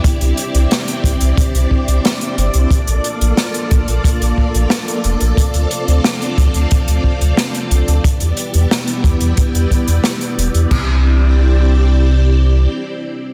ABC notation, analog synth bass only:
X:1
M:4/4
L:1/16
Q:1/4=90
K:C
V:1 name="Analog synth bass" clef=bass
z C,, z C,, z2 C,, C,, z C,, z C,, z2 G,,, C,, | z _B,,, z B,,, z2 B,,, B,,, z B,,, z B,,, z2 F,,, B,,, | z D,, z D,, z2 D,, D,, z D,, z D,, z2 C,, D,, | z E,, z E,, z2 E,, E,, z E,, z E,, z2 E,,, E,, |
C,,12 z4 |]